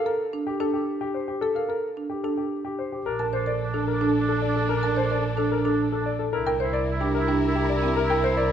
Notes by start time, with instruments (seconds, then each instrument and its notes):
Already playing: marimba A#4
0.06 marimba A4, grand piano A#4
0.33 marimba D4
0.47 grand piano G4
0.60 marimba D4, grand piano A4
0.74 grand piano G4
1.01 grand piano G4
1.14 grand piano C5
1.28 grand piano G4
1.41 grand piano A4, marimba A4
1.55 marimba A#4, grand piano F5
1.69 marimba A4, grand piano A#4
1.97 marimba D4
2.10 grand piano G4
2.24 marimba D4, grand piano A4
2.38 grand piano G4
2.65 grand piano G4
2.79 grand piano C5
2.92 grand piano G4
3.05 double bass A#1, string section D4 A4, oboe D4, grand piano A#4
3.19 marimba A#4, grand piano A5
3.33 oboe D4, marimba C5, grand piano C5
3.46 marimba A#4, grand piano D5
3.63 oboe D4
3.74 marimba D4, grand piano A4
3.88 oboe D4, grand piano A#4
4.01 marimba D4, grand piano A4
4.20 oboe D4
4.29 grand piano A4
4.42 grand piano D5
4.48 oboe D4
4.56 grand piano A4
4.69 grand piano A#4
4.76 oboe D4
4.83 marimba A#4, grand piano A5
4.96 marimba C5, grand piano C5
5.05 oboe D4
5.10 marimba A#4, grand piano D5
5.34 oboe D4, marimba D4
5.38 grand piano A4
5.52 grand piano A#4
5.62 oboe D4, marimba D4, grand piano A4
5.91 oboe D4, grand piano A4
6.06 grand piano D5
6.19 grand piano A4
6.33 double bass C2, string section E4 A#4, oboe E4, grand piano A#4
6.46 marimba A#4, grand piano G5
6.60 oboe E4, grand piano C5, marimba C5
6.73 marimba A#4, grand piano D5
6.91 oboe E4
7.01 marimba D4, grand piano G4
7.15 grand piano A#4
7.19 oboe E4
7.28 marimba D4, grand piano G4
7.47 oboe E4
7.56 grand piano G4
7.69 grand piano D5
7.76 oboe E4
7.83 marimba C4, grand piano G4
7.97 grand piano A#4
8.04 oboe E4
8.10 marimba A#4, grand piano G5
8.24 marimba C5, grand piano C5
8.32 oboe E4
8.37 marimba A#4, grand piano D5